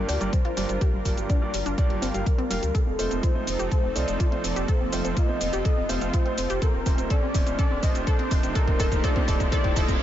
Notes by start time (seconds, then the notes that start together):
Already playing: G2 G3 A#3 D4 F4 G4 A#4 D5, riser
0.08 D2 G4 D5, open hi-hat, cabasa
0.21 G1 G2 G3 A#3 F4 G4 D5, closed hi-hat, cabasa
0.33 G3 C5, kick, closed hi-hat, cabasa
0.45 F4, closed hi-hat
0.57 G1 G2 G3 A#3 F4 G4 D5, open hi-hat, cabasa
0.69 G1 G3, closed hi-hat, cabasa
0.81 G4 A#4, kick, closed hi-hat, cabasa
0.93 G1 G3
1.05 G1 G2 G3 A#3 F4 G4 D5, kick, open hi-hat, cabasa
1.17 G1 G3, closed hi-hat, cabasa
1.29 D4 D5, kick, closed hi-hat, cabasa
1.42 G2 G3 A#3 F4 G4 D5
1.54 G1 G3, open hi-hat, cabasa
1.66 G1 D4, closed hi-hat, cabasa
1.78 G2 G3 A#3 F4 G4 D5, kick, closed hi-hat, cabasa
1.90 G1 G3, closed hi-hat
2.02 G1 C4 F5, open hi-hat, cabasa
2.14 G1 G2 G3 A#3 F4 G4 F5, closed hi-hat, cabasa
2.26 G3 A#4, kick, closed hi-hat, cabasa
2.38 C4, closed hi-hat
2.50 F1 G3 A#3 F4 G4 F5, open hi-hat, cabasa
2.62 D2 G3, closed hi-hat, cabasa
2.74 F3 C4 D#4 A4, kick, closed hi-hat, cabasa
2.87 F1 C4
2.99 F1 A3 C4 D#4 F4 C5, open hi-hat, cabasa
3.11 F1 C4, closed hi-hat, cabasa
3.23 F4 C5, kick, closed hi-hat, cabasa
3.35 A3 C4 D#4 F4 C5
3.47 F1 C4, open hi-hat, cabasa
3.59 F1 G4, closed hi-hat, cabasa
3.71 A4 C5, kick, closed hi-hat, cabasa
3.84 F1 C4
3.95 C2 A3 C4 D#4 F4 C5 D5, open hi-hat, cabasa
4.08 F1 C4, closed hi-hat, cabasa
4.20 F4 D5, kick, closed hi-hat, cabasa
4.32 A3 C4 D#4 F4 C5, closed hi-hat
4.44 F1 C4, open hi-hat, cabasa
4.56 F1 G4, closed hi-hat, cabasa
4.68 F4 A4 C5, kick, closed hi-hat, cabasa
4.80 F1 C4
4.92 F1 A3 C4 D#4 F4 C5, open hi-hat, cabasa
5.05 F1 C4, closed hi-hat, cabasa
5.16 F4 D#5, kick, closed hi-hat, cabasa
5.29 A3 C4 D#4 F4 C5
5.41 F1 C4, open hi-hat, cabasa
5.53 F1 G4, closed hi-hat, cabasa
5.65 A4 D#5, kick, closed hi-hat, cabasa
5.77 F1 C4
5.89 F1 A3 C4 D#4 F4 C5 F5, open hi-hat, cabasa
6.01 F1 C4, closed hi-hat, cabasa
6.13 F4 C5, kick, closed hi-hat, cabasa
6.26 A3 C4 D#4 F4 C5, closed hi-hat
6.38 F1 C4, open hi-hat, cabasa
6.50 F1 G4, closed hi-hat, cabasa
6.62 D#3 A#3 D4 G4 A4 A#4, kick, closed hi-hat, cabasa
6.74 D#1 C4
6.86 D#1 A3 C4 D#4 F4 C5, kick, open hi-hat, cabasa
6.98 D#1 C4, closed hi-hat, cabasa
7.10 A4 D5, kick, closed hi-hat, cabasa
7.23 C4
7.34 D#1 A3 C4 D#4 F4 C5, kick, open hi-hat, cabasa
7.47 D#1 C4, closed hi-hat, cabasa
7.59 A4 D5, kick, closed hi-hat, cabasa
7.71 D#1 C4
7.83 A#1 A3 C4 D#4 F4 C5 D#5, kick, open hi-hat, cabasa
7.95 D#1 C4, closed hi-hat, cabasa
8.07 A4 C5, kick, closed hi-hat, cabasa
8.19 C4, closed hi-hat
8.31 D#1 A3 C4 D#4 F4 C5, kick, open hi-hat, cabasa
8.43 D#1 C4, closed hi-hat, cabasa
8.55 A3 D#4 F4 A4 A#4 C5, kick, closed hi-hat, cabasa
8.68 D#1 C4, kick, closed hi-hat
8.79 D#1 A3 D#4 F4 A4 C5, kick, open hi-hat, cabasa
8.92 D#1 C4, kick, closed hi-hat, cabasa
9.04 A3 D#4 F4 A4 C5 D5, kick, closed hi-hat, cabasa
9.16 C4, kick, closed hi-hat
9.28 D#1 A3 D#4 F4 A4 C5, kick, open hi-hat, cabasa
9.40 D#1 C4, kick, closed hi-hat, cabasa
9.52 A3 D#4 F4 A4 C5 D5, kick, closed hi-hat, reverse cymbal, cabasa
9.64 D#1 C4, kick, closed hi-hat
9.76 D#1 A3 D#4 F4 A4 C5 D#5, kick, open hi-hat, cabasa
9.88 D#1 C4, kick, closed hi-hat, cabasa